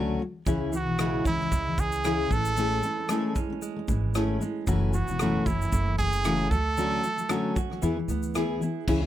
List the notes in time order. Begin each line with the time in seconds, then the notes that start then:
Already playing: C#2 D3 F#3 A3 C#4 F#4
0.19 D3 F#3
0.46 C#2 C#3 E3 C#4 E4 G#4, kick, shaker
0.72 C#3 E3 F#4, shaker
0.86 B1 C#3 E3
0.99 C#3 E3 G#3 C#4 E4 G#4, cross-stick, shaker
1.25 C#2 C#3 E3 C#4 E4, kick, shaker
1.39 C#3 E3, cross-stick
1.51 C#2 G#3, kick, shaker
1.66 C#3 E3
1.78 C#3 E3 G#4, kick, shaker
1.92 shaker
2.04 C#3 E3 C#4 E4 G#4, cross-stick, shaker
2.30 A1 E3 A3 C#4 A4, kick, shaker
2.45 shaker
2.56 E3 A3 C#4 E4 G#4, shaker
2.83 E3 C#4, shaker
2.98 A3 C#4
3.09 G#3 A3 C#4 E4 G#4, cross-stick, shaker
3.35 A3 C#4, kick, shaker
3.50 A3 C#4
3.62 G#3, shaker
3.76 A3 C#4
3.88 G#1 E3 A3 C#4, kick, shaker
4.14 A3 C#4 E4 G#4, cross-stick, shaker
4.41 G#3 A3 C#4, shaker
4.67 F#1 F#2 C#3 E3 A3 C#4 F#4, kick, shaker
4.93 F#2 C#3 E3 F#4, shaker
5.08 E1 F#2 C#3 E3, shaker
5.19 F#2 C#3 E3 A3 C#4 F#4, cross-stick, shaker
5.46 F#1 F#2 C#3 E3 C#4 E4, kick, shaker
5.60 F#2 C#3 E3, shaker
5.72 F#1 A3, kick, shaker
5.86 F#2 C#3 E3
5.98 F#2 C#3 E3 G#4, kick, shaker
6.12 shaker
6.24 F#2 C#3 E3 A3 C#4 F#4, cross-stick, shaker
6.50 D2 D3 F#3 A3 A4, kick, shaker
6.77 D3 F#3 A3 C#4 F#4, shaker
7.03 D3 F#3 A3, shaker
7.17 D3 F#3, shaker
7.29 D3 F#3 A3 C#4 F#4, cross-stick, shaker
7.55 D3 F#3 F#4, kick, shaker
7.70 D3 F#3, cross-stick
7.82 E2 E3 B3 E4 G#4, shaker
7.97 E3 B3
8.08 D2 E3 B3, shaker
8.23 shaker
8.34 E3 B3 E4 G#4, cross-stick, shaker
8.61 E3 B3 E4, shaker
8.88 C#2 C#3 E3 C#4 E4 G#4, kick, crash
9.01 E4 G#4